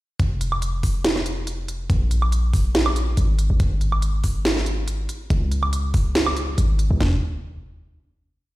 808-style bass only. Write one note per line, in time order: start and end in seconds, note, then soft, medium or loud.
0.20 1.89 F1 loud
1.90 3.16 A#1 loud
3.17 3.49 G#1 medium
3.50 3.59 G#1 loud
3.60 5.08 G#1 loud
5.30 6.57 C#2 loud
6.58 6.89 G#1 medium
6.91 7.00 C#2 loud
7.01 7.20 F1 loud